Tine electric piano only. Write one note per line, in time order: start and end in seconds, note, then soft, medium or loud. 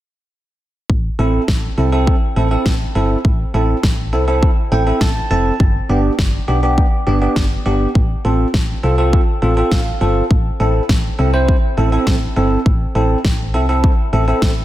1.19 1.41 C4 medium
1.19 1.41 E4 medium
1.19 1.41 A4 medium
1.78 1.89 C4 medium
1.78 1.89 E4 medium
1.78 1.89 A4 medium
1.92 2.14 C4 medium
1.92 2.14 E4 medium
1.92 2.14 A4 medium
2.36 2.47 C4 medium
2.36 2.47 E4 medium
2.36 2.47 A4 medium
2.51 2.73 C4 medium
2.51 2.73 E4 medium
2.51 2.73 A4 medium
2.95 3.17 C4 medium
2.95 3.17 E4 medium
2.95 3.17 A4 medium
3.54 3.76 C4 medium
3.54 3.76 E4 medium
3.54 3.76 A4 medium
4.13 4.24 C4 medium
4.13 4.24 E4 medium
4.13 4.24 A4 medium
4.28 4.50 C4 medium
4.28 4.50 E4 medium
4.28 4.50 A4 medium
4.72 4.83 C4 medium
4.72 4.83 E4 medium
4.72 4.83 A4 medium
4.72 4.99 G5 medium
4.87 5.09 C4 medium
4.87 5.09 E4 medium
4.87 5.09 A4 medium
5.01 5.29 A5 medium
5.31 5.53 C4 medium
5.31 5.53 E4 medium
5.31 5.53 A4 medium
5.31 5.58 A5 medium
5.89 6.11 B3 medium
5.89 6.11 D4 medium
5.89 6.11 G4 medium
6.48 6.59 B3 medium
6.48 6.59 D4 medium
6.48 6.59 G4 medium
6.63 6.85 B3 medium
6.63 6.85 D4 medium
6.63 6.85 G4 medium
7.07 7.18 B3 medium
7.07 7.18 D4 medium
7.07 7.18 G4 medium
7.22 7.44 B3 medium
7.22 7.44 D4 medium
7.22 7.44 G4 medium
7.66 7.88 B3 medium
7.66 7.88 D4 medium
7.66 7.88 G4 medium
8.25 8.47 C4 medium
8.25 8.47 F4 medium
8.25 8.47 A4 medium
8.83 8.95 C4 medium
8.83 8.94 F4 medium
8.83 8.95 A4 medium
8.98 9.20 C4 medium
8.98 9.20 F4 medium
8.98 9.20 A4 medium
9.42 9.53 C4 medium
9.42 9.53 F4 medium
9.42 9.53 A4 medium
9.57 9.79 C4 medium
9.57 9.79 F4 medium
9.57 9.79 A4 medium
9.72 10.27 F5 medium
10.01 10.23 C4 medium
10.01 10.23 F4 medium
10.01 10.23 A4 medium
10.60 10.82 C4 medium
10.60 10.82 E4 medium
10.60 10.82 A4 medium
11.19 11.30 C4 medium
11.19 11.30 E4 medium
11.19 11.30 A4 medium
11.34 11.56 C4 medium
11.34 11.56 E4 medium
11.34 11.56 C5 medium
11.78 11.89 C4 medium
11.78 11.89 E4 medium
11.78 11.89 A4 medium
11.92 12.14 C4 medium
11.92 12.14 E4 medium
11.92 12.14 A4 medium
12.36 12.58 C4 medium
12.36 12.58 E4 medium
12.36 12.58 A4 medium
12.95 13.17 C4 medium
12.95 13.17 E4 medium
12.95 13.17 A4 medium
13.54 13.65 C4 medium
13.54 13.65 E4 medium
13.54 13.65 A4 medium
13.69 13.91 C4 medium
13.69 13.91 E4 medium
13.69 13.91 A4 medium
14.13 14.24 C4 medium
14.13 14.24 E4 medium
14.13 14.24 A4 medium
14.28 14.50 C4 medium
14.28 14.50 E4 medium
14.28 14.50 A4 medium